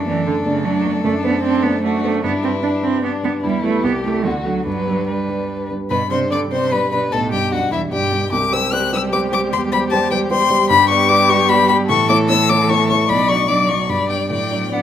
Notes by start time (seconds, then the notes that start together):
Already playing: F#2 D4 A4
0.07 E3 A3 D4 D5
0.27 D3
0.46 C#3 A3 D4 D5
0.64 F#3 D4
0.85 A3 D4 D5
1.03 F#2 A3 D4
1.24 A3 B3 D4 C5
1.44 C4 D4
1.63 A3 B3 D4 C5
1.83 A3 D4 F#4
2.03 A3 D4 C5
2.23 G2 B3 D4 E4
2.44 G3 C4 D4 B4
2.63 D4
2.83 G3 C4 D4
3.03 B3 D4
3.23 G3 B3 D4 B4
3.43 E2 G3 E4
3.64 G3 A3 E4 B4
3.84 C2 B3 G4
4.04 G3 A3 E4 A4
4.25 D2 D3 F#4
4.45 F#3 D4 A4
4.66 G2 F#3 D4 B4
4.87 G3 D4 B4
5.08 G3 B4
5.29 G3 D4 B4
5.70 G3 D4 B4
5.90 G2 B2 B4 B5
6.11 C3 G3 D4 C5 D5 C6
6.31 D3 G3 D4 D5 D6
6.51 C3 G3 D4 C5 D5 C6
6.71 B2 G3 D4 B4 D5 B5
6.90 B2 G3 D4 B4 D5 B5
7.11 B1 A2 A4 A5
7.31 G2 G3 D4 G4 D5 G5
7.51 F#2 G3 D4 F#4 D5 F#5
7.71 E2 G3 D4 E4 E5
7.92 G2 G3 D4 G4 D5 G5
8.12 G3 D4 D5
8.31 C2 G3 G4 D6
8.52 G3 G4 C5 E6
8.72 G3 G4 C5 F#6
8.93 G3 G4 C5 E6
9.12 G3 G4 C5 D6
9.32 G3 G4 C5 D6
9.52 E2 C6
9.72 G3 G4 C5 B5
9.91 G3 G4 C5 A5
10.11 G3 G4 C5 G5
10.31 G3 G4 C5 C6
10.50 G3 G4 C5
10.70 G2 G3 G4 B5
10.89 B3 G4 D5 C#6
11.09 B3 G4 D5 D6
11.29 B3 G4 D5 C#6
11.49 B3 G4 D5 B5
11.68 B3 G4 D5 B5
11.89 A2 E3 A4 C#6
12.09 A3 E4 C#5 D6
12.29 A3 E4 C#5 E6
12.49 A3 E4 C#5 D6
12.69 A3 E4 C#5 C#6
12.90 A3 E4 C#5 C#6
13.08 B1 F#3 D5 B5
13.28 F#3 D4 D5 C#6
13.48 F#3 D4 D5 D6
13.69 F#3 D4 C#6
13.89 G2 G3 D5 B5
14.09 G3 D4 D5 G5
14.30 A2 F#3 D5 G5
14.51 F#3 D4 D5
14.72 F#3 B3 D4 D5 F#5